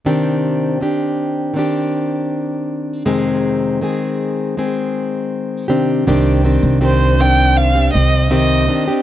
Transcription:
X:1
M:4/4
L:1/16
Q:1/4=80
K:Cm
V:1 name="Violin"
z16 | z16 | z4 c2 g2 f2 e2 e3 z |]
V:2 name="Steel-string acoustic guitar"
[C,E,CDG]4 [E,CDG]4 [E,CDG]8 | [F,,C,E,A,CA]4 [E,A,CA]4 [E,A,CA]6 [C,E,CDG]2 | [C,E,CDG]2 [E,CDG]2 [C,E,CDG]2 [E,CDG]3 [CDG] [E,CG]2 [C,E,CG]2 [E,CDG] [CDG] |]
V:3 name="Upright bass" clef=bass
z16 | z16 | C,,3 C,,6- C,, C,,4 z2 |]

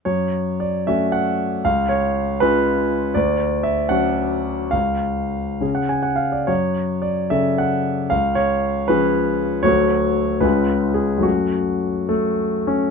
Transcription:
X:1
M:6/8
L:1/16
Q:3/8=75
K:F#m
V:1 name="Grand piano"
c4 d2 e2 f4 | ^e2 c4 B6 | d4 e2 f6 | ^e6- e f g f e d |
c4 d2 e2 f4 | ^e2 c4 B6 | c6 B4 G2 | F6 A,4 C2 |]
V:2 name="Grand piano"
F,,6 [A,CF]6 | C,,6 [G,C^E]6 | D,,6 [F,CF]6 | C,,6 [C,CG]6 |
F,,6 [C,CA]6 | C,,6 [^E,CG]6 | [D,,F,A,F]6 [C,,G,C^E]6 | [F,,A,C]12 |]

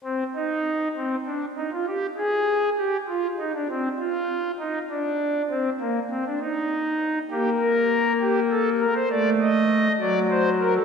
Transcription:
X:1
M:12/8
L:1/16
Q:3/8=66
K:Gphr
V:1 name="Pipe organ"
C2 E4 C2 D2 E F G2 A4 G2 F2 E D | C2 F4 E2 D4 C2 B,2 C D E6 | G2 B4 G2 =A2 B c d2 e4 d2 c2 B A |]
V:2 name="Pipe organ"
z24 | z24 | B,12 =A,6 ^F,6 |]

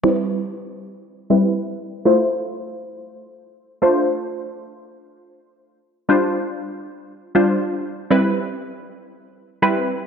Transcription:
X:1
M:4/4
L:1/8
Q:1/4=119
K:C
V:1 name="Synth stab"
[G,CEB]4- [G,CEB] [G,CEB]3 | [A,EFc]6- [A,EFc] [A,DFc]- | [A,DFc]6- [A,DFc] z | [G,DFc]4- [G,DFc] [G,DFc]3 |
[G,CEB]6 [G,CEB]2 |]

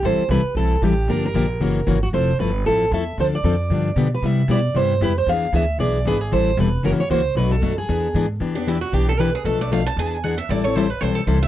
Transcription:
X:1
M:4/4
L:1/8
Q:"Swing" 1/4=230
K:Am
V:1 name="Steel-string acoustic guitar"
z8 | z8 | z8 | z8 |
z8 | z8 | z8 | z8 |
[K:Em] z D E F G A B ^G | A d =f a (3^g a g ^f e | d ^c =c B c A c e |]
V:2 name="Steel-string acoustic guitar"
c2 B2 A2 G2 | _B B6 ^F | c2 B2 A2 e2 | c d6 B |
e2 d2 c2 B c | f2 e2 d2 B ^G | c2 B2 ^A ^c =c2 | B A2 ^G4 z |
[K:Em] z8 | z8 | z8 |]
V:3 name="Steel-string acoustic guitar"
[E,G,CEA] z [E,G,CEA] z [E,G,CEA] z [E,G,CEA] z | [D,F,_B,DG] z [D,F,B,DG] z [^C,E,^A,^C^F] z [C,E,A,CF] z | [F,A,CEA] z [F,A,CEA] z [F,A,CEA] z [F,A,CEA] z | [D,F,CDA] z [D,F,CDA] z [D,F,B,DG] z [D,F,B,DG] z |
[C,G,B,EG] z [C,G,B,EG] z [C,G,B,EG] z [C,G,B,EG] z | [E,B,D^G] z [E,B,DG] z [E,B,DG] z [E,B,DG] z | [E,G,CEA] z [E,G,CEA] z [^C,E,^A,^C^F] z [C,E,A,CF] z | [B,,^F,A,D^F] z [B,,F,A,DF] z [E,B,D^G] z [E,B,DG] z |
[K:Em] [E,B,DG] [B,DG] [E,B,DG] z [E,B,DG] z [E,B,DG] z | [B,,=F,A,DA] [A,DA] [B,,F,A,DA] z [E,B,D^G] z [E,B,DG] z | [E,G,CEA] [CEA] [E,G,CEA] z [E,G,CEA] z [E,G,CEA] z |]
V:4 name="Upright bass" clef=bass
A,,, z C,, z B,,,2 A,,,2 | G,,,2 _B,,,2 ^F,,,2 ^G,,,2 | F,,,2 G,,,2 A,,,2 E,,2 | D,,2 F,,2 G,,2 B,,2 |
C,2 B,,2 G,,2 F,,2 | E,,2 D,,2 B,,,2 ^G,,,2 | A,,,2 E,,,2 ^F,,, z ^C,,2 | B,,,2 ^F,,2 E,,2 ^G,,2 |
[K:Em] E,,4 B,,,4 | B,,,4 E,,4 | A,,,4 B,,,2 C,,2 |]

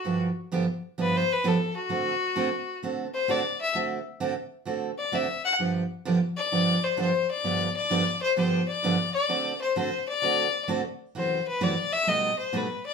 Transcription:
X:1
M:4/4
L:1/16
Q:"Swing" 1/4=130
K:Dmix
V:1 name="Fiddle"
F z6 z (3B2 c2 B2 A2 F2- | F8 z2 c2 d2 e2 | z8 z2 d2 e2 f2 | z6 d4 c2 c2 d2- |
d2 d4 c2 c2 d4 d2- | d2 c2 c2 d6 z4 | c2 B2 d2 e2 ^d2 c2 B2 =d2 |]
V:2 name="Steel-string acoustic guitar"
[G,,D,=F,B,DG]2 z2 [G,,D,F,B,DG]2 z2 [G,,D,F,B,DG]2 z2 [G,,D,F,B,DG]2 z2 | [D,A,CFA]2 z2 [D,A,CFA]2 z2 [D,A,CFA]2 z2 [D,A,CFA]2 z2 | [D,A,CFA]2 z2 [D,A,CFA]2 z2 [D,A,CFA]2 z2 [D,A,CFA]2 z2 | [G,,D,=F,B,DG]2 z2 [G,,D,F,B,DG]2 z2 [G,,D,F,B,DG]2 z2 [G,,D,F,B,DG]2 z2 |
[G,,D,=F,B,DG]2 z2 [G,,D,F,B,DG]2 z2 [G,,D,F,B,DG]2 z2 [G,,D,F,B,DG]2 z2 | [D,A,CFA]2 z2 [D,A,CFA]2 z2 [D,A,CFA]2 z2 [D,A,CFA]2 z2 | [F,,C,E,A,EF]2 z2 [F,,C,E,A,EF]2 z2 [B,,G,A,^DA]2 z2 [B,,G,A,DA]2 z2 |]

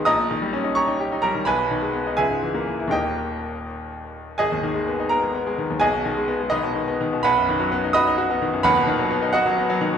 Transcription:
X:1
M:6/8
L:1/16
Q:3/8=85
K:G#m
V:1 name="Grand piano"
[dad']6 [cac']4 [Aa]2 | [Bgb]6 [Geg]6 | [=Gd=g]6 z6 | [Gdg]6 [Aa]6 |
[Gdg]6 [DBd]6 | [Bfb]6 [dbd']6 | [Bfb]6 [Fdf]6 |]
V:2 name="Grand piano" clef=bass
A,,, A,, D, =G, C D =G D G D G, D, | B,,, B,, D, G, B, D C,, G,, E, A, E, E | [D,,,D,,D,A,]12 | G,,, D,, D, G, B, D B, G, B, G, D, D,, |
B,,, B,, D, G, B, G, D, B,, D, B, D, B,, | B,,, F,, D, F, B, D F D F B, D, F,, | [D,,,D,,] B,, D, F, B, D B, F, B, F, D, B,, |]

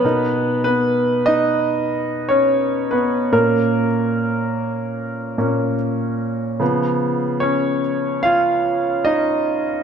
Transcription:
X:1
M:4/4
L:1/16
Q:1/4=73
K:B
V:1 name="Grand piano"
[B,B]3 [B,B]3 [Dd]4- [Dd] [Cc]3 [B,B]2 | A12 z4 | z4 [Cc]4 [^E^e]4 [Dd]4 |]
V:2 name="Grand piano"
[B,,DA]16 | [A,,A,C]2 z8 [A,,A,C]2 z4 | [C,^E,B,]6 z8 z2 |]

